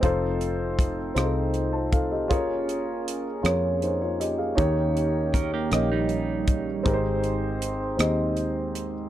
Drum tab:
HH |xxxxxx|xxxxxx|xxxxxx|xxxxxx|
SD |---r--|---r--|---r--|---r--|
BD |o-o--o|o-----|o-o--o|o-----|